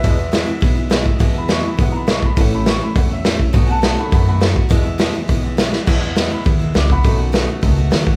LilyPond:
<<
  \new Staff \with { instrumentName = "Upright piano" } { \time 4/4 \key e \major \tempo 4 = 206 <b' e''>2~ <b' e''>8 r4. | r8 b''8 cis'''8 b''8 fis''8 <ais'' b''>8 cis'''8 b''8 | fis''8 b''8 cis'''8 b''8 fis''8 e''4 r8 | r8 <fis'' gis'' a''>8 <fis'' a''>8 <fis'' b''>8 <fis'' b''>8 <fis'' b''>4 r8 |
r1 | r4. b''8 r4 d'''8 <fis'' b''>8~ | <fis'' b''>8 r2. r8 | }
  \new Staff \with { instrumentName = "Upright piano" } { \clef bass \time 4/4 \key e \major <e gis b>8 r2. r8 | r8 <e gis b>4. <e gis b>8 r4. | <e a cis'>2 <e a cis'>8 r4. | r4. <dis a cis'>4. r4 |
r4. <e gis b>4. r4 | r8 <e gis b>4. r2 | <dis a cis'>2 <dis a cis'>8 r4. | }
  \new Staff \with { instrumentName = "Steel-string acoustic guitar" } { \time 4/4 \key e \major <e, b, e gis b e'>8 <e gis b e'>8 <e, b, e gis b e'>8 <e gis b e'>8 <e gis b e'>8 <e gis b e'>8 <e, b, e gis b e'>8 <e gis b e'>8 | <e, b, e gis b e'>8 <e gis b e'>8 <e, b, e gis b e'>8 <e gis b e'>8 <e gis b e'>8 <e gis b e'>8 <e, b, e gis b e'>8 <e gis b e'>8 | <a, e a cis' e'>8 <a cis' e'>8 <a, e a cis' e'>8 <a cis' e'>8 <e a cis' e'>8 <a cis' e'>8 <a, e a cis' e'>8 <a cis' e'>8 | <b, dis a b fis'>8 <a b fis'>8 <b, dis a b fis'>8 <a b fis'>8 <dis a b fis'>8 <a b fis'>8 <b, dis a b fis'>8 <a b fis'>8 |
<e, b, e gis b e'>8 <e gis b e'>8 <e, b, e gis b e'>8 <e gis b e'>8 <e gis b e'>8 <e gis b e'>8 <e, b, e gis b e'>8 <e gis b e'>8 | <e, b, e gis b e'>8 <e gis b e'>8 <e, b, e gis b e'>8 <e gis b e'>8 <e gis b e'>8 <e gis b e'>8 <e, b, e gis b e'>8 <e gis b e'>8 | <b, dis a b fis'>8 <a b fis'>8 <b, dis a b fis'>8 <a b fis'>8 <dis a b fis'>8 <a b fis'>8 <b, dis a b fis'>8 <a b fis'>8 | }
  \new Staff \with { instrumentName = "Upright bass" } { \clef bass \time 4/4 \key e \major e,2 b,,2 | e,2 b,,2 | a,,2 e,2 | b,,2 fis,2 |
e,2 b,,2 | e,2 dis,4 cis,4 | b,,2 cis,4 dis,4 | }
  \new DrumStaff \with { instrumentName = "Drums" } \drummode { \time 4/4 <hho bd>4 <hho sn>4 <hho bd>4 <hho sn>8 bd8 | <hho bd>4 <hho sn>4 <hho bd>4 <hho sn>8 bd8 | <hho bd>4 <hho sn>4 <hho bd>4 <hho sn>8 bd8 | <hho bd>4 <hho sn>4 <hho bd>4 <hho sn>8 bd8 |
<hho bd>4 <hho sn>4 <hho bd>4 <hho sn>8 sn8 | <cymc bd>4 <hho sn>4 <hho bd>4 <hho sn>8 bd8 | <hho bd>4 <hho sn>4 <hho bd>4 <hho sn>8 bd8 | }
>>